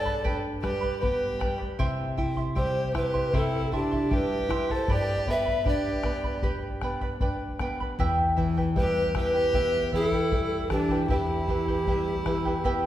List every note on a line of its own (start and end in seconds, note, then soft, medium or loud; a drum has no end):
0.00 1.75 G2 medium
0.00 0.24 G3 medium
0.00 0.32 A4 medium
0.00 0.32 D5 loud
0.05 0.23 B4 soft
0.05 0.24 D5 soft
0.05 0.24 B5 medium
0.05 bombo low soft
0.24 0.62 D4 medium
0.24 0.63 G4 medium
0.24 0.62 B4 medium
0.24 0.62 D5 medium
0.24 0.61 G5 medium
0.24 0.63 B5 medium
0.24 bombo low medium
0.62 1.01 G3 medium
0.62 0.99 G4 medium
0.62 0.81 B4 medium
0.62 0.99 B4 medium
0.62 0.81 D5 medium
0.62 0.82 G5 medium
0.62 0.80 B5 medium
0.62 bombo rim soft
0.62 bombo low medium
0.81 1.00 B4 soft
0.81 1.00 D5 soft
0.81 1.01 B5 medium
0.81 bombo low soft
1.00 1.40 B3 medium
1.00 1.56 G4 medium
1.00 1.55 B4 medium
1.00 1.38 B4 medium
1.00 1.38 D5 medium
1.00 1.37 G5 medium
1.00 1.39 B5 medium
1.00 bombo low medium
1.38 1.78 G3 medium
1.38 1.59 B4 medium
1.38 1.58 D5 medium
1.38 1.59 G5 medium
1.38 1.57 B5 medium
1.38 bombo rim medium
1.38 bombo low medium
1.58 1.79 B4 soft
1.58 1.79 D5 soft
1.58 1.78 B5 medium
1.58 bombo low soft
1.79 3.32 C3 medium
1.79 2.16 E4 medium
1.79 2.18 C5 medium
1.79 2.17 E5 medium
1.79 2.16 G5 medium
1.79 2.17 C6 medium
1.79 bombo low medium
2.17 2.37 E4 medium
2.17 2.56 E4 medium
2.17 2.37 E5 medium
2.17 2.37 G5 medium
2.17 2.36 C6 medium
2.17 bombo low medium
2.36 2.55 E4 soft
2.36 2.55 E5 soft
2.36 2.56 C6 soft
2.36 bombo low soft
2.55 2.94 G3 medium
2.55 2.93 E4 medium
2.55 2.93 G4 medium
2.55 2.93 C5 medium
2.55 2.94 E5 medium
2.55 2.93 G5 medium
2.55 2.95 C6 medium
2.55 bombo low medium
2.94 3.14 E4 medium
2.94 3.32 E4 medium
2.94 3.36 G4 medium
2.94 3.38 B4 medium
2.94 3.13 E5 medium
2.94 3.14 G5 medium
2.94 3.13 C6 medium
2.94 bombo rim medium
2.94 bombo low medium
3.14 3.33 E4 soft
3.14 3.33 E5 soft
3.14 3.33 C6 medium
3.14 bombo low medium
3.34 3.71 C3 medium
3.34 3.72 E4 medium
3.34 3.73 E4 medium
3.34 3.74 A4 medium
3.34 3.72 C5 medium
3.34 3.72 E5 medium
3.34 3.71 G5 medium
3.34 3.72 C6 medium
3.34 bombo low medium
3.72 4.15 D4 medium
3.72 4.10 E4 medium
3.72 3.92 E4 medium
3.72 4.16 G4 medium
3.72 3.91 E5 medium
3.72 3.92 G5 medium
3.72 3.90 C6 medium
3.72 bombo low medium
3.91 4.10 E4 soft
3.91 4.10 E5 soft
3.91 4.11 C6 medium
3.91 bombo low medium
4.11 4.49 G3 medium
4.11 4.49 E4 medium
4.11 4.73 G4 medium
4.11 4.75 B4 medium
4.11 4.49 E5 medium
4.11 4.48 G5 medium
4.11 bombo low medium
4.49 4.87 E4 medium
4.49 4.69 E4 medium
4.49 4.68 E5 medium
4.49 4.69 G5 medium
4.49 4.68 C6 medium
4.49 bombo rim medium
4.49 bombo low medium
4.69 4.89 E4 soft
4.69 4.93 A4 medium
4.69 4.89 E5 soft
4.69 4.89 C6 medium
4.69 bombo low soft
4.73 4.94 C5 medium
4.88 7.95 G2 medium
4.88 5.28 G4 medium
4.88 5.32 G4 medium
4.88 5.26 B4 medium
4.88 5.27 D5 medium
4.88 5.31 D5 loud
4.88 5.25 G5 medium
4.88 5.27 B5 medium
4.88 bombo low medium
5.27 5.65 B3 medium
5.27 5.46 B4 medium
5.27 5.67 B4 medium
5.27 5.45 D5 medium
5.27 5.67 E5 medium
5.27 5.46 G5 medium
5.27 5.44 B5 medium
5.27 bombo low medium
5.46 5.65 B4 soft
5.46 5.65 D5 soft
5.46 5.66 B5 soft
5.46 bombo low medium
5.65 6.04 D4 medium
5.65 6.41 G4 medium
5.65 6.04 B4 medium
5.65 6.04 D5 medium
5.65 6.41 D5 medium
5.65 6.03 G5 medium
5.65 6.04 B5 medium
5.65 bombo low medium
6.03 6.43 B3 medium
6.03 6.24 B4 medium
6.03 6.24 D5 medium
6.03 6.24 G5 medium
6.03 6.23 B5 medium
6.03 bombo rim medium
6.03 bombo low medium
6.23 6.42 B4 soft
6.23 6.43 D5 soft
6.23 6.43 B5 medium
6.23 bombo low medium
6.42 6.82 G4 medium
6.42 6.81 G4 medium
6.42 6.82 B4 medium
6.42 6.82 D5 medium
6.42 6.81 G5 medium
6.42 6.83 B5 medium
6.42 bombo low medium
6.81 7.20 B3 medium
6.81 7.02 B4 medium
6.81 7.01 D5 medium
6.81 7.02 G5 medium
6.81 7.00 B5 medium
6.81 bombo rim medium
6.81 bombo low medium
7.01 7.20 B4 soft
7.01 7.21 D5 medium
7.01 7.21 B5 medium
7.01 bombo low medium
7.20 7.59 D4 medium
7.20 7.60 B4 medium
7.20 7.60 D5 medium
7.20 7.60 G5 medium
7.20 7.60 B5 medium
7.20 bombo low medium
7.59 7.98 B3 medium
7.59 7.80 B4 medium
7.59 7.80 D5 medium
7.59 7.80 G5 medium
7.59 7.79 B5 medium
7.59 bombo rim medium
7.59 bombo low medium
7.80 7.99 B4 soft
7.80 7.99 D5 soft
7.80 7.99 B5 medium
7.80 bombo low soft
7.99 11.05 E2 medium
7.99 8.37 E4 medium
7.99 8.38 G4 medium
7.99 8.36 B4 medium
7.99 8.35 E5 medium
7.99 8.37 G5 medium
7.99 bombo low medium
8.37 8.75 E3 medium
8.37 8.57 E4 medium
8.37 8.56 B4 medium
8.37 8.57 E5 medium
8.37 8.56 G5 medium
8.37 bombo low medium
8.57 8.76 E4 soft
8.57 8.76 B4 soft
8.57 8.76 G5 medium
8.57 bombo low soft
8.76 9.14 G3 medium
8.76 9.14 E4 medium
8.76 9.14 G4 medium
8.76 9.15 B4 medium
8.76 9.14 B4 medium
8.76 9.14 E5 medium
8.76 9.15 G5 medium
8.76 bombo low medium
9.15 9.53 E3 medium
9.15 9.34 E4 medium
9.15 9.90 G4 medium
9.15 9.33 B4 medium
9.15 9.90 B4 loud
9.15 9.35 E5 medium
9.15 9.33 G5 medium
9.15 bombo rim medium
9.15 bombo low medium
9.34 9.53 E4 soft
9.34 9.53 B4 soft
9.34 9.53 G5 medium
9.53 9.92 B3 medium
9.53 9.92 E4 medium
9.53 9.93 G4 medium
9.53 9.92 B4 medium
9.53 9.91 E5 medium
9.53 9.93 G5 medium
9.53 bombo low medium
9.92 10.31 E3 medium
9.92 10.12 E4 medium
9.92 10.68 E4 medium
9.92 10.08 G#4 loud
9.92 10.12 B4 medium
9.92 10.12 E5 medium
9.92 10.12 G5 medium
9.92 bombo low medium
10.08 10.68 A4 loud
10.12 10.32 E4 soft
10.12 10.32 B4 medium
10.12 10.32 G5 medium
10.12 bombo low medium
10.32 10.70 G3 medium
10.32 10.71 E4 medium
10.32 10.71 B4 medium
10.32 10.70 E5 medium
10.32 10.72 G5 medium
10.32 bombo low medium
10.70 11.08 E3 medium
10.70 11.08 D4 medium
10.70 10.91 E4 medium
10.70 11.07 G4 medium
10.70 10.90 B4 medium
10.70 10.90 E5 medium
10.70 10.90 G5 medium
10.70 bombo rim medium
10.70 bombo low medium
10.89 11.09 E4 soft
10.89 11.09 B4 soft
10.89 11.10 G5 soft
10.89 bombo low medium
11.08 12.86 E2 medium
11.08 11.48 E4 medium
11.08 12.86 E4 medium
11.08 11.49 G4 medium
11.08 12.86 G4 medium
11.08 11.49 B4 medium
11.08 11.47 E5 medium
11.08 11.49 G5 medium
11.08 bombo low medium
11.48 11.86 E3 medium
11.48 11.68 E4 medium
11.48 11.68 B4 medium
11.48 11.68 E5 medium
11.48 11.67 G5 medium
11.48 bombo low medium
11.68 11.87 E4 soft
11.68 11.87 B4 soft
11.68 11.87 G5 soft
11.68 bombo low soft
11.87 12.25 G3 medium
11.87 12.25 E4 medium
11.87 12.25 B4 medium
11.87 12.25 E5 medium
11.87 12.26 G5 medium
11.87 bombo low medium
12.26 12.64 E3 medium
12.26 12.45 E4 medium
12.26 12.45 B4 medium
12.26 12.46 E5 medium
12.26 12.44 G5 medium
12.26 bombo rim medium
12.26 bombo low medium
12.45 12.64 E4 soft
12.45 12.64 B4 soft
12.45 12.64 G5 medium
12.45 bombo low soft
12.64 12.86 B3 medium
12.64 12.86 E4 medium
12.64 12.86 G4 medium
12.64 12.86 B4 medium
12.64 12.86 E5 medium
12.64 12.86 G5 loud
12.64 bombo low medium